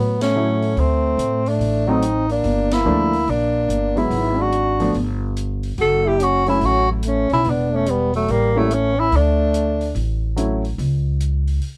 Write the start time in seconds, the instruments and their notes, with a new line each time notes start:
Already playing: upright bass A2, trombone F#3, tenor saxophone B3
0.21 trombone A3, tenor saxophone C#4, snare, ride
0.35 grand piano F#3 A3 C#4 E4
0.62 open hi-hat
0.76 upright bass D2, trombone A3, tenor saxophone C4, open hi-hat
1.17 upright bass A2, closed hi-hat
1.46 trombone A3, tenor saxophone D4, open hi-hat
1.59 upright bass A1, open hi-hat
1.88 grand piano F#3 A3 C4 D#4, trombone C4, tenor saxophone D#4
2.02 closed hi-hat
2.29 trombone A#3, tenor saxophone D4, open hi-hat
2.44 upright bass G1, open hi-hat
2.71 trombone A#3, tenor saxophone E4, snare, ride
2.85 upright bass D2, grand piano F3 A3 A#3 D4
3.13 open hi-hat
3.28 upright bass A#1, trombone A#3, tenor saxophone D4, open hi-hat
3.69 upright bass G1, closed hi-hat
3.96 grand piano F#3 G#3 B3 E4, trombone B3, tenor saxophone E4, open hi-hat
4.10 upright bass G#1, open hi-hat
4.38 trombone D4, tenor saxophone F#4
4.52 closed hi-hat
4.80 grand piano F3 A3 B3 D4, open hi-hat
4.94 upright bass G1, open hi-hat
5.37 closed hi-hat
5.63 open hi-hat
5.78 upright bass F#1, trombone F#4, tenor saxophone A4, open hi-hat
6.05 trombone E4, tenor saxophone G4
6.20 trombone C#4, tenor saxophone F#4, closed hi-hat
6.46 grand piano F#3 A3 C#4 E4, trombone C#4, tenor saxophone E4, open hi-hat
6.61 upright bass A1, trombone C#4, open hi-hat
6.65 tenor saxophone F#4
6.90 trombone F#3, tenor saxophone A3
7.03 trombone A3, closed hi-hat
7.07 tenor saxophone C#4
7.29 upright bass B1, trombone C#4, tenor saxophone E4, open hi-hat
7.44 upright bass E1, trombone B3, open hi-hat
7.50 tenor saxophone D4
7.72 trombone A3, tenor saxophone C#4
7.86 trombone G3, tenor saxophone B3, closed hi-hat
8.13 trombone F#3, tenor saxophone A3, open hi-hat
8.28 upright bass A1, trombone G3, tenor saxophone A#3, open hi-hat
8.55 trombone F#3, grand piano G3 A#3 C#4 E4, tenor saxophone A3
8.70 trombone A3, tenor saxophone C#4, closed hi-hat
8.97 trombone C#4, tenor saxophone E4
9.12 upright bass D2, trombone A3, open hi-hat
9.16 tenor saxophone D4
9.54 closed hi-hat
9.81 open hi-hat
9.95 upright bass A1, open hi-hat
10.36 grand piano F#3 A3 C#4 E4, closed hi-hat
10.64 open hi-hat
10.78 upright bass C#2, open hi-hat
11.20 closed hi-hat
11.47 open hi-hat
11.62 open hi-hat